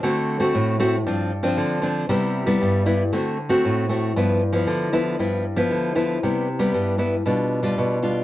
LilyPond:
\new Staff \with { instrumentName = "Nylon-string guitar" } { \time 4/4 \key c \major \tempo 4 = 116 << { <a c' fis'>8. <a c' fis'>8. <a c' fis'>16 r16 <f c' d'>8 r16 <f c' d'>8. <f c' d'>8 | <g b e'>8. <g b e'>8. <g b e'>16 r16 <a c' fis'>8 r16 <a c' fis'>8. <a c' fis'>8 | <f b e'>8 r16 <f b e'>8. <f b e'>8 <f b e'>8 r16 <f b e'>8. <f b e'>8 | <g b e'>8 r16 <g b e'>8. <g b e'>16 r16 <g d' f'>8. <g d' f'>8. <g d' f'>8 | } \\ { d4 a,4 g,4 d4 | c4 g,4 d4 a,4 | g,4 d4 g,4 d4 | c4 g,4 b,4 b,4 | } >> }